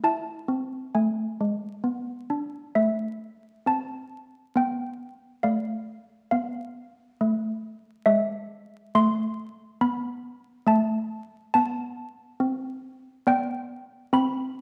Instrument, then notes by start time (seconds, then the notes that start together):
handbells
0.04 E4 E5 A5
0.48 C4
0.95 A3 G#5
1.41 G#3
1.84 B3
2.30 D4
2.75 A3 E5
3.66 C4 A5
4.56 B3 G5
5.43 A3 D5 F5
6.31 B3 F5
7.21 A3
8.06 G#3 E5
8.95 A3 C6
9.81 B3 B5
10.67 A3 E5 A5
11.54 B3 A5
12.40 C4
13.27 B3 D5 G5
14.13 C4 B5